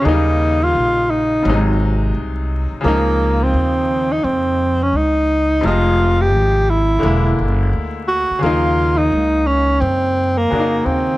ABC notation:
X:1
M:4/4
L:1/16
Q:"Swing 16ths" 1/4=86
K:Ebdor
V:1 name="Tenor saxophone"
E3 F3 E4 z6 | B,3 C4 E C3 D E4 | F3 =G3 =E4 z4 _G2 | F3 E3 D2 C3 B,3 C2 |]
V:2 name="Grand piano" clef=bass
[D,G,=G,B,E]8 [_C,=C,_G,A,E]8 | [D,F,B,E]16 | [C,F,A,e]8 [=D,^G,^A,=E]8 | [D,G,B,E]12 [D,B,=DEG]4 |]
V:3 name="Upright bass" clef=bass
E,,4 B,,,4 A,,,4 C,,3 z | D,,4 E,,4 F,,4 D,,4 | F,,,4 A,,,4 =E,,,2 G,,,2 =D,,3 z | E,,4 D,,4 G,,4 F,,2 E,,2 |]